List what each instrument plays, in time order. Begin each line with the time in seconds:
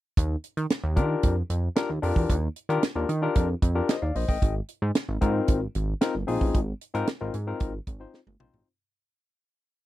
0.17 analog synth bass D#2, kick, closed hi-hat
0.44 closed hi-hat
0.57 analog synth bass D#3, closed hi-hat
0.70 snare, closed hi-hat
0.84 analog synth bass D#2
0.96 analog synth bass D#3, tine electric piano D4 F4 G4 A#4, kick, closed hi-hat
1.23 analog synth bass F2, kick, closed hi-hat
1.50 analog synth bass F2, closed hi-hat
1.76 tine electric piano D4 F4 G4 A#4, snare, closed hi-hat
1.90 analog synth bass D#2
2.02 analog synth bass F2, tine electric piano D4 F4 G4 A#4, open hi-hat
2.16 analog synth bass E2, kick
2.30 analog synth bass D#2, kick, closed hi-hat
2.56 closed hi-hat
2.69 analog synth bass D#3, tine electric piano D4 F4 G4 A#4, closed hi-hat
2.83 snare, closed hi-hat
2.95 analog synth bass D#2, tine electric piano D4 F4 G4 A#4
3.09 analog synth bass D#3, closed hi-hat
3.22 tine electric piano D4 F4 G4 A#4
3.35 analog synth bass F2, kick, closed hi-hat
3.62 analog synth bass F2, kick, closed hi-hat
3.75 tine electric piano D4 F4 G4 A#4
3.89 tine electric piano C5 D#5, snare, closed hi-hat
4.02 analog synth bass D#2, tine electric piano D5 F5
4.15 analog synth bass A#1, tine electric piano C5 D#5, open hi-hat
4.28 analog synth bass A1, tine electric piano D#5 G5, kick
4.42 analog synth bass G#1, kick, closed hi-hat
4.68 closed hi-hat
4.82 analog synth bass G#2
4.95 snare, closed hi-hat
5.09 analog synth bass G#1
5.21 analog synth bass G#2, tine electric piano C4 D#4 F4 A#4, kick, closed hi-hat
5.48 analog synth bass G#1, kick, closed hi-hat
5.75 analog synth bass G#1, closed hi-hat
6.01 tine electric piano C4 D#4 F4 A#4, snare, closed hi-hat
6.15 analog synth bass G1
6.27 analog synth bass A#1, tine electric piano C4 D#4 F4 G#4, open hi-hat
6.41 analog synth bass A1, kick
6.55 analog synth bass G#1, kick, closed hi-hat
6.81 closed hi-hat
6.94 analog synth bass G#2, tine electric piano C4 D#4 F4 A#4, closed hi-hat
7.07 snare, closed hi-hat
7.21 analog synth bass G#1, tine electric piano C4 D#4 F4 A#4
7.34 analog synth bass G#2, closed hi-hat
7.47 tine electric piano C4 D#4 F4 A#4
7.60 analog synth bass G#1, kick, closed hi-hat
7.87 analog synth bass G#1, kick, closed hi-hat
8.00 tine electric piano C4 D#4 F4 C5
8.14 snare
8.27 analog synth bass G1, high tom
8.40 analog synth bass A#1, tine electric piano C4 D#4 F4 C5, mid tom
8.54 analog synth bass A1, floor tom